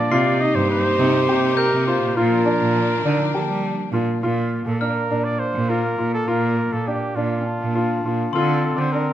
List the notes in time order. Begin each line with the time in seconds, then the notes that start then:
Already playing: D4 D5
0.11 C3 A#3 D#4 F4 G4 C7
0.40 D#4 D#5
0.55 G2 C5
0.70 C5
0.99 C3 D#4
1.29 C3 G4
1.57 A#4 G6
1.73 C3
1.87 F4 C5
2.02 A#2
2.15 A#2 F3 D4 F4 A#4
2.46 D4
2.61 A#2
3.05 D3 D4 D#4
3.34 D3 D4 G4
3.48 G3
3.92 A#2 D4 F4
4.21 A#2 A#3 F4
4.66 A#2 A4
4.80 D4 A#4 F6
5.11 A#2 D4
5.24 D5
5.39 C5
5.54 A#2
5.69 F4 A#4
5.98 A#2 F4
6.14 A4
6.28 A#2 F4 A#4
6.73 A#2 A4
6.87 D4 G4
7.16 A#2 D4 F4
7.39 C#4
7.46 D4
7.61 A#2
7.75 F4
8.04 A#2 F4
8.33 D3 C4 F4 A4 C6
8.75 D3 C5 D5
8.93 D4 A#4